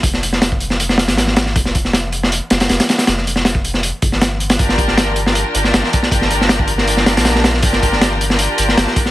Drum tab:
HH |x-x-x-x-x-xxx-x-|x-x-x-x-x-xxxxxx|x-x-x-x-x-x-x-xx|x-x-x-x-x-x-x-x-|
SD |-o-oo--o-ooooooo|-o-oo--o--oooooo|oo-oo--o---oo--o|-o-oo--o---ooo-o|
BD |o----o----------|o-o-------------|-----o----o-----|o-o-----------o-|

HH |x-x-x-x-x-xxx-x-|x-x-x-x-x-x-x-x-|
SD |-o-oo--o-ooooooo|-o-oo--o---ooo-o|
BD |o----o----------|o-o-----------o-|